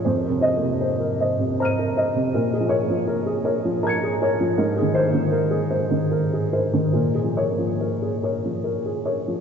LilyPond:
<<
  \new Staff \with { instrumentName = "Upright piano" } { \time 3/4 \key bes \minor \tempo 4 = 78 << { r8 ees''16 r4 r16 <bes'' f''' ees''''>4 | r8 des''16 r4 r16 <bes'' aes''' des''''>4 | r8 c''16 r2 r16 | r8 des''16 r2 r16 | } \\ { c''16 bes'16 c''16 c16 c''16 bes'16 <c'' ees''>16 c16 c''16 bes'16 <c'' ees''>16 c16 | bes'16 aes'16 bes'16 f16 bes'16 aes'16 <bes' des''>16 f16 bes'16 aes'16 <bes' des''>16 f16 | bes'16 aes'16 bes'16 ees16 bes'16 aes'16 <bes' c''>16 ees16 bes'16 aes'16 <bes' c''>16 ees16 | bes'16 aes'16 bes'16 f16 bes'16 aes'16 <bes' des''>16 f16 bes'16 aes'16 <bes' des''>16 f16 | } >> }
  \new Staff \with { instrumentName = "Upright piano" } { \clef bass \time 3/4 \key bes \minor \tuplet 3/2 { f,8 c8 bes8 } r2 | \tuplet 3/2 { bes,8 f8 bes8 } r2 | \tuplet 3/2 { aes,8 ees8 bes8 } r2 | \tuplet 3/2 { bes,8 f8 bes8 } r2 | }
>>